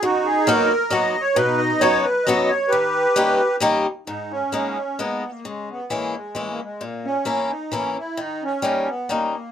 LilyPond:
<<
  \new Staff \with { instrumentName = "Accordion" } { \time 3/4 \key b \major \tempo 4 = 132 << { dis'4. r4. | dis'4. r4. | g'2 r4 | \key gis \minor r2. |
r2. | r2. | r2. | } \\ { fis'8 gis'8 ais'4 \tuplet 3/2 { dis''4 cis''8 } | b'8 dis''8 cis''8 b'8 dis''8 cis''8 | b'2 r4 | dis'8 cis'4. \tuplet 3/2 { b4 ais8 } |
gis8 b8 ais8 gis8 ais32 gis32 ais16 gis8 | ais8 cis'4 dis'8 cis'8 e'8 | dis'8 cis'4 b8 ais4 | } >> }
  \new Staff \with { instrumentName = "Steel-string acoustic guitar" } { \time 3/4 \key b \major fis,4 <fis ais b dis' fis'>8 r8 <fis ais b dis' fis'>8 r8 | b,4 <fis b cis' dis' fis'>8 r8 <fis b cis' dis' fis'>8 r8 | dis4 <g ais cis' dis' g'>8 r8 <g ais cis' dis' g'>8 r8 | \key gis \minor gis,4 <gis ais b dis'>8 r8 <gis ais b dis'>8 r8 |
cis4 <e gis cis' e'>8 r8 <e gis cis' e'>8 r8 | ais,4 <e ais cis' e'>8 r8 <e ais cis' e'>8 r8 | dis4 <g ais cis' dis'>8 r8 <g ais cis' dis'>8 r8 | }
>>